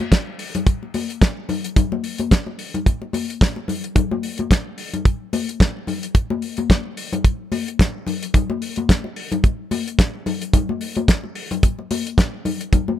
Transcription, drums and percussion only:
0.00 high conga
0.12 kick, snare, closed hi-hat, muted conga
0.39 open hi-hat
0.55 closed hi-hat, low conga
0.67 kick, closed hi-hat
0.83 muted conga
0.94 open hi-hat, high conga
1.10 closed hi-hat
1.22 kick, snare, closed hi-hat
1.49 open hi-hat, low conga
1.64 closed hi-hat
1.76 kick, closed hi-hat, low conga
1.92 muted conga, high conga
2.04 open hi-hat
2.18 closed hi-hat, high conga
2.31 kick, snare, closed hi-hat, muted conga
2.47 muted conga
2.59 open hi-hat
2.74 closed hi-hat, low conga
2.86 kick, closed hi-hat, muted conga
3.02 muted conga
3.13 open hi-hat, high conga
3.30 closed hi-hat
3.41 kick, snare, closed hi-hat
3.56 muted conga
3.68 open hi-hat, low conga
3.84 closed hi-hat
3.96 kick, closed hi-hat, muted conga, low conga
4.11 high conga
4.23 open hi-hat
4.38 closed hi-hat, high conga
4.51 kick, snare, closed hi-hat, muted conga
4.78 open hi-hat
4.93 closed hi-hat, low conga
5.05 kick, closed hi-hat
5.33 open hi-hat, high conga
5.49 closed hi-hat
5.60 kick, snare, closed hi-hat
5.87 open hi-hat, low conga
6.03 closed hi-hat
6.15 kick, closed hi-hat
6.30 high conga
6.42 open hi-hat
6.57 closed hi-hat, high conga
6.70 kick, snare, closed hi-hat, high conga
6.97 open hi-hat
7.13 closed hi-hat, low conga
7.25 kick, closed hi-hat
7.52 open hi-hat, high conga
7.68 closed hi-hat
7.79 kick, snare, closed hi-hat
8.07 open hi-hat, low conga
8.23 closed hi-hat
8.34 kick, closed hi-hat, low conga
8.50 muted conga, high conga
8.62 open hi-hat
8.76 closed hi-hat, high conga
8.89 kick, snare, closed hi-hat
9.04 muted conga
9.16 open hi-hat
9.32 closed hi-hat, low conga
9.44 kick, closed hi-hat, muted conga
9.71 open hi-hat, high conga
9.88 closed hi-hat
9.99 kick, snare, closed hi-hat
10.26 open hi-hat, low conga
10.42 closed hi-hat
10.53 kick, closed hi-hat, muted conga, low conga
10.69 high conga
10.81 open hi-hat
10.95 closed hi-hat, high conga
11.08 kick, snare, closed hi-hat, muted conga
11.24 muted conga
11.35 open hi-hat
11.51 closed hi-hat, low conga
11.63 kick, closed hi-hat, muted conga
11.79 muted conga
11.91 open hi-hat, high conga
12.07 closed hi-hat
12.18 kick, snare, closed hi-hat
12.45 open hi-hat, low conga
12.61 closed hi-hat
12.73 kick, closed hi-hat, muted conga, low conga
12.88 high conga

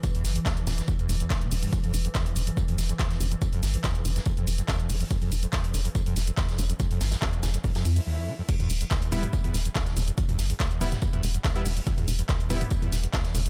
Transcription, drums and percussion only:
0.03 kick, closed hi-hat, tambourine, shaker
0.15 closed hi-hat, shaker
0.24 snare, open hi-hat, tambourine, shaker
0.35 closed hi-hat, shaker
0.46 kick, snare, clap, closed hi-hat, tambourine, shaker
0.57 closed hi-hat, shaker
0.67 snare, open hi-hat, tambourine, shaker
0.78 snare, closed hi-hat, shaker
0.88 kick, tambourine, shaker
0.99 closed hi-hat, shaker
1.09 open hi-hat, tambourine, shaker
1.20 closed hi-hat, shaker
1.30 kick, snare, clap, closed hi-hat, tambourine, shaker
1.41 closed hi-hat, shaker
1.51 open hi-hat, shaker
1.63 closed hi-hat, shaker
1.73 kick, closed hi-hat, tambourine, shaker
1.84 closed hi-hat, shaker
1.94 open hi-hat, tambourine, shaker
2.05 closed hi-hat, shaker
2.15 kick, snare, clap, closed hi-hat, tambourine, shaker
2.26 closed hi-hat, shaker
2.36 open hi-hat, tambourine, shaker
2.47 closed hi-hat, shaker
2.57 kick, tambourine, shaker
2.68 closed hi-hat, shaker
2.78 snare, open hi-hat, tambourine, shaker
2.89 closed hi-hat, shaker
2.99 kick, snare, clap, closed hi-hat, tambourine, shaker
3.11 snare, closed hi-hat, shaker
3.21 open hi-hat, tambourine, shaker
3.32 closed hi-hat, shaker
3.42 kick, closed hi-hat, tambourine, shaker
3.52 closed hi-hat, shaker
3.63 snare, open hi-hat, tambourine, shaker
3.74 closed hi-hat, shaker
3.84 kick, snare, clap, closed hi-hat, tambourine, shaker
3.95 closed hi-hat, shaker
4.05 open hi-hat, tambourine, shaker
4.16 snare, closed hi-hat, shaker
4.25 kick, tambourine, shaker
4.37 closed hi-hat, shaker
4.47 open hi-hat, tambourine, shaker
4.58 closed hi-hat, shaker
4.68 kick, snare, clap, closed hi-hat, tambourine, shaker
4.79 closed hi-hat, shaker
4.90 open hi-hat, shaker
5.01 closed hi-hat, shaker
5.11 kick, closed hi-hat, tambourine, shaker
5.22 closed hi-hat, shaker
5.32 open hi-hat, tambourine, shaker
5.43 closed hi-hat, shaker
5.52 kick, snare, clap, closed hi-hat, tambourine, shaker
5.64 closed hi-hat, shaker
5.74 open hi-hat, tambourine, shaker
5.85 closed hi-hat, shaker
5.95 kick, tambourine, shaker
6.06 closed hi-hat, shaker
6.16 snare, open hi-hat, tambourine, shaker
6.27 closed hi-hat, shaker
6.37 kick, snare, clap, closed hi-hat, tambourine, shaker
6.49 snare, closed hi-hat, shaker
6.58 open hi-hat, tambourine, shaker
6.70 closed hi-hat, shaker
6.80 kick, closed hi-hat, tambourine, shaker
6.91 closed hi-hat, shaker
7.01 snare, open hi-hat, tambourine, shaker
7.11 snare, closed hi-hat, tambourine, shaker
7.22 kick, snare, clap, closed hi-hat, tambourine, shaker
7.33 closed hi-hat, shaker
7.43 snare, open hi-hat, tambourine, shaker
7.54 closed hi-hat, shaker
7.64 kick, open hi-hat, shaker
7.75 snare, closed hi-hat, tambourine, shaker
7.85 open hi-hat, shaker
7.96 closed hi-hat, open hi-hat, shaker
8.49 kick, closed hi-hat, tambourine, crash, shaker
8.60 closed hi-hat, mid tom, shaker
8.70 open hi-hat, tambourine, shaker
8.81 closed hi-hat, shaker
8.90 kick, snare, clap, closed hi-hat, tambourine, shaker
9.02 closed hi-hat, shaker
9.12 mid tom, open hi-hat, tambourine, shaker
9.23 closed hi-hat, mid tom, shaker
9.33 kick, tambourine, shaker
9.44 closed hi-hat, mid tom, shaker
9.54 snare, open hi-hat, tambourine, shaker
9.65 closed hi-hat, shaker
9.75 kick, snare, clap, closed hi-hat, tambourine, shaker
9.86 snare, closed hi-hat, shaker
9.97 open hi-hat, tambourine, shaker
10.08 closed hi-hat, shaker
10.18 kick, closed hi-hat, tambourine, shaker
10.28 closed hi-hat, mid tom, shaker
10.38 snare, open hi-hat, tambourine, shaker
10.50 closed hi-hat, shaker
10.60 kick, snare, clap, closed hi-hat, tambourine, shaker
10.71 closed hi-hat, shaker
10.81 mid tom, open hi-hat, tambourine, shaker
10.92 snare, closed hi-hat, mid tom, shaker
11.02 kick, tambourine, shaker
11.13 closed hi-hat, mid tom, shaker
11.23 open hi-hat, tambourine, shaker
11.34 closed hi-hat, shaker
11.44 kick, snare, clap, closed hi-hat, tambourine, shaker
11.55 closed hi-hat, shaker
11.66 open hi-hat, shaker
11.77 closed hi-hat, shaker
11.87 kick, closed hi-hat, tambourine, shaker
11.98 closed hi-hat, mid tom, shaker
12.08 open hi-hat, tambourine, shaker
12.19 closed hi-hat, shaker
12.28 kick, snare, clap, closed hi-hat, tambourine, shaker
12.40 closed hi-hat, shaker
12.50 mid tom, open hi-hat, tambourine, shaker
12.61 closed hi-hat, mid tom, shaker
12.70 kick, tambourine, shaker
12.82 closed hi-hat, mid tom, shaker
12.92 snare, open hi-hat, tambourine, shaker
13.03 closed hi-hat, shaker
13.13 kick, snare, clap, closed hi-hat, tambourine, shaker
13.25 snare, closed hi-hat, shaker
13.34 open hi-hat, tambourine, shaker
13.46 closed hi-hat, shaker

